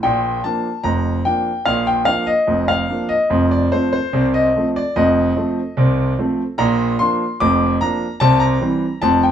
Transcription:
0.03 A#1 A#2 G5
0.44 F3 A#3 D4 A5
0.83 F1 F2 A#5
1.25 F3 A#3 D4 G5
1.66 A#1 A#2 F5
1.87 G5
2.05 F3 A#3 D4 F5
2.27 D#5
2.47 F1 F2
2.68 F5
2.89 F3 A#3 D4
3.09 D#5
3.30 F1 F2
3.51 D5
3.72 F3 A3 C4 C5
3.93 C5
4.13 C2 C3
4.34 D#5
4.56 F3 A3 C4
4.76 D5
4.96 F1 F2 D#5
5.36 F3 A3 C4
5.77 C2 C3
6.18 F3 A3 C4
6.58 A#1 A#2 A#5
6.99 F3 A#3 D4 C6
7.40 F1 F2 D6
7.81 F3 A#3 D4 A#5
8.20 C2 C3 A5
8.40 A#5
8.61 E3 G3 C4
9.02 F1 F2 A5
9.23 G5

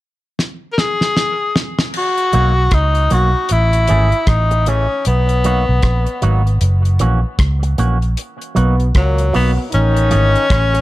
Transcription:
0.39 snare
0.73 A#4
0.78 G#4, snare
1.01 snare
1.17 snare
1.56 snare
1.79 snare
1.94 crash
1.98 F#4
2.18 closed hi-hat
2.33 B1 F#3 A#3 D#4 F#4, closed hi-hat
2.71 C#2 D#4, kick, cross-stick, closed hi-hat
2.95 closed hi-hat
3.10 B1 F#3 A#3 D#4 F#4, closed hi-hat
3.35 muted clean electric guitar stroke
3.49 A1 E4, closed hi-hat
3.73 closed hi-hat
3.88 G#1 E3 A3 C#4 G#4, closed hi-hat
4.12 closed hi-hat
4.27 A1 D#4, kick, cross-stick, closed hi-hat
4.51 muted clean electric guitar stroke, closed hi-hat
4.66 E3 A3 C#4 G#4, closed hi-hat
5.05 B1 B3, closed hi-hat
5.29 closed hi-hat
5.44 F#3 A#3 D#4 F#4, closed hi-hat
5.69 B1
5.82 A#1, kick, cross-stick, closed hi-hat
6.07 closed hi-hat
6.22 G#1 F#3 A#3 D#4 F#4, closed hi-hat
6.46 muted clean electric guitar stroke, closed hi-hat
6.61 F#1, closed hi-hat
6.85 closed hi-hat
6.99 A#1 E3 A#3 C#4 F#4, closed hi-hat
7.39 C#2, kick, cross-stick, closed hi-hat
7.63 muted clean electric guitar stroke, closed hi-hat
7.78 A#1 E3 A#3 C#4 F#4, closed hi-hat
8.02 closed hi-hat
8.17 closed hi-hat
8.41 closed hi-hat
8.55 B1 B2 F#3 A#3 B3 D#4 F#4, closed hi-hat
8.80 closed hi-hat
8.93 C#2 A#2 F#3 A#3, kick, cross-stick, closed hi-hat
9.18 closed hi-hat
9.33 B1 B2 F#3 A#3 B3 D#4 F#4, open hi-hat
9.58 muted clean electric guitar stroke
9.71 A1 D#3 C#4 D#4, closed hi-hat
9.97 closed hi-hat
10.11 G#1 E3 A3 C#4 G#4, closed hi-hat
10.35 closed hi-hat
10.49 A1 C#3 C#4, kick, cross-stick, closed hi-hat
10.74 muted clean electric guitar stroke, closed hi-hat

